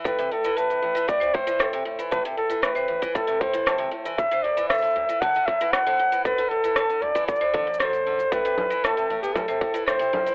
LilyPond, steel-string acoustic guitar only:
\new Staff \with { instrumentName = "Steel-string acoustic guitar" } { \clef bass \time 4/4 \key a \dorian \tempo 4 = 116 a,16 c16 a,16 e16 a,16 c16 a,16 e16 a,16 c16 a,16 e16 a,16 c16 a,16 e16 | a,16 c16 a,16 e16 a,16 c16 a,16 e16 a,16 c16 a,16 e16 a,16 c16 a,16 e16 | fis,16 d16 fis,16 e16 fis,16 d16 fis,16 e16 fis,16 d16 fis,16 e16 fis,16 d16 fis,16 e16 | fis,16 d16 fis,16 e16 fis,16 d16 fis,16 e16 fis,16 d16 d16 fis,16 fis16 fis,16 d16 fis,16 |
a,16 c16 a,16 e16 a,16 c16 a,16 b16 a,16 c16 a,16 e16 a,16 c16 a,16 e16 | }